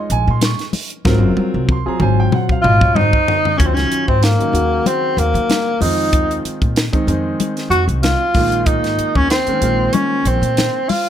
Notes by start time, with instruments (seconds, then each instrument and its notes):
Already playing: grand piano G#3 D#4 F4 C#5 D#5
0.10 upright bass A#1, grand piano G#5, closed hi-hat, muted conga
0.27 upright bass A#2, grand piano C6
0.41 grand piano C#6, snare, closed hi-hat, high conga
0.59 snare, closed hi-hat
0.73 open hi-hat, high conga
0.90 closed hi-hat
1.05 upright bass G#1, grand piano F#3 C4 F4 A#4, kick, snare
1.22 upright bass F#1
1.37 high tom
1.54 upright bass C2
1.69 grand piano C6, kick, low conga
1.86 grand piano F#3 C4 F4 G#4 A#5, muted upright bass stroke
2.00 upright bass G#1, grand piano F#3 C4 F4 C5 G#5, mid tom, muted conga, low conga
2.20 grand piano G5
2.32 grand piano F#5, mid tom, muted conga, high conga
2.49 grand piano F5, kick
2.62 upright bass G#1, tenor saxophone F4, grand piano D#5, mid tom, muted conga
2.81 upright bass G#2, grand piano C#5, kick
2.95 tenor saxophone D#4, grand piano C5, floor tom, high conga
3.13 kick
3.28 floor tom
3.45 floor tom
3.58 upright bass D#2, grand piano D#3 F#3 C#4 F4, tenor saxophone C#4, kick, closed hi-hat, muted conga
3.65 tenor saxophone C4
3.74 upright bass C#2, tenor saxophone C#4, snare, closed hi-hat
3.91 muted upright bass stroke, closed hi-hat
4.08 upright bass G#2, tenor saxophone C4, kick
4.23 tenor saxophone A#3, snare, closed hi-hat
4.39 grand piano D#3 F#3 C#4 D#4, muted upright bass stroke, closed hi-hat
4.53 upright bass D#2, grand piano C#3 D#3 F#3 F#4, closed hi-hat, muted conga
4.86 tenor saxophone C4, closed hi-hat, muted conga, high conga
5.17 upright bass D#2, tenor saxophone A#3, closed hi-hat, muted conga
5.34 upright bass D#3, closed hi-hat
5.50 snare, closed hi-hat, high conga
5.81 upright bass F2, grand piano D#3 G#3 C4 F4, tenor saxophone D#4, open hi-hat, high conga
6.12 kick, closed hi-hat, muted conga
6.29 upright bass D#2, closed hi-hat
6.44 muted upright bass stroke, closed hi-hat
6.62 upright bass A#2, kick, closed hi-hat
6.76 snare, closed hi-hat
6.93 grand piano D#3 G#3 C4 D#4, muted upright bass stroke, kick, closed hi-hat
7.07 upright bass F2, grand piano D#3 G#3 C4 D#4, closed hi-hat, muted conga
7.40 closed hi-hat, muted conga, high conga
7.57 snare, closed hi-hat
7.70 upright bass F2, tenor saxophone F#4, closed hi-hat, muted conga
7.88 upright bass C2, closed hi-hat
8.03 tenor saxophone F4, snare, closed hi-hat, high conga
8.34 upright bass A#1, grand piano D#3 G#3 A#3 F4, kick, open hi-hat
8.52 closed hi-hat
8.66 tenor saxophone D#4, kick, closed hi-hat, muted conga
8.83 upright bass G#1, snare, closed hi-hat
8.98 muted upright bass stroke, closed hi-hat
9.15 upright bass D#2, tenor saxophone C#4, kick
9.30 tenor saxophone C4, snare, closed hi-hat
9.47 grand piano D#3 G#3 A#3 C#4, muted upright bass stroke, closed hi-hat
9.62 upright bass A#1, grand piano D#3 G#3 A#3 F4, closed hi-hat, muted conga
9.93 tenor saxophone C#4, closed hi-hat, muted conga, high conga
10.25 upright bass A#1, tenor saxophone C4, closed hi-hat, muted conga
10.41 upright bass A#2, closed hi-hat
10.57 snare, closed hi-hat, high conga
10.89 tenor saxophone F4, open hi-hat, high conga